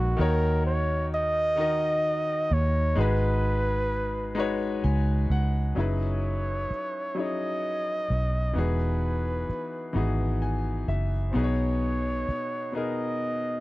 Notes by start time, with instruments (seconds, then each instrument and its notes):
Already playing: fingered electric bass A#1, grand piano G#3 D#4 F#4 A#4 B4, flugelhorn F#4
0.17 fingered electric bass D#2, grand piano D#3 D#4 F#4 A#4
0.21 flugelhorn A#4, grand piano C#5
0.66 flugelhorn C#5
1.14 flugelhorn D#5
1.56 grand piano D#3 D#4 F#4
1.60 grand piano A#4 D#5
2.51 fingered electric bass D#2, flugelhorn C#5
2.95 fingered electric bass G#1, grand piano G#3 D#4 F#4 G#4
3.00 flugelhorn B4, grand piano B4
4.35 grand piano G#3 D#4 F#4 B4
4.40 grand piano C#5
4.84 fingered electric bass C#2, grand piano G#5
5.30 fingered electric bass C#2, grand piano F#5
5.75 fingered electric bass F#1, grand piano F#3 C#4 D#4 E4 G#4, flugelhorn C#5
5.80 grand piano B4
6.71 muted fingered electric bass stroke
7.15 grand piano F#3 C#4 D#4 E4 G#4
7.19 grand piano C#5, flugelhorn D#5
8.10 fingered electric bass B1
8.53 fingered electric bass E1, grand piano E3 B3 D#4
8.58 grand piano F#4 G#4, flugelhorn B4
9.49 muted fingered electric bass stroke
9.93 fingered electric bass G#1, grand piano E3 B3 D#4 F#4
9.98 grand piano G#4
10.42 grand piano G#5
10.88 fingered electric bass F#1, grand piano E5
11.31 grand piano B2 B3, flugelhorn C5
11.35 fingered electric bass B1, grand piano D#4 G#4 B4, flugelhorn C#5
11.44 grand piano C#5
12.29 muted fingered electric bass stroke
12.72 grand piano B2 B3 D#4 G#4, flugelhorn D#5
12.77 grand piano A#4